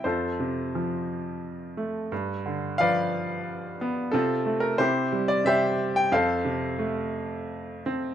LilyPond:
<<
  \new Staff \with { instrumentName = "Grand piano" } { \time 3/4 \key f \major \tempo 4 = 88 << { c''2.~ | c''4 f''4. r8 | a'8. bes'16 c''8. d''16 e''8. g''16 | f''2~ f''8 r8 | } \\ { <f' a'>2.~ | <f' a'>4 <b' d''>4. r8 | <c' f'>4 <e' g'>4 <g' c''>4 | <a' c''>2~ <a' c''>8 r8 | } >> }
  \new Staff \with { instrumentName = "Grand piano" } { \clef bass \time 3/4 \key f \major f,8 c8 f4. a8 | g,8 d8 f4. b8 | c8 a8 c8 g8 c4 | f,8 c8 a4. c'8 | }
>>